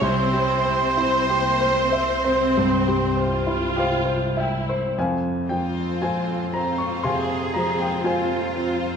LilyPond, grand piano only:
\new Staff \with { instrumentName = "Grand piano" } { \time 4/4 \key f \minor \tempo 4 = 56 << { r2. <c'' f''>8 g''8 | <c'' f'' aes''>8 g''8 <c'' f'' aes''>8 bes''16 des'''16 <f'' aes'' c'''>8 bes''16 g''16 <c'' f'' aes''>4 | } \\ { c,16 g16 c'16 e'16 g'16 c''16 e''16 c''16 g,16 g16 c'16 e'16 g'16 c''16 e''16 c''16 | f,8 f8 f'8 c'8 c8 f8 f'8 c'8 | } >> }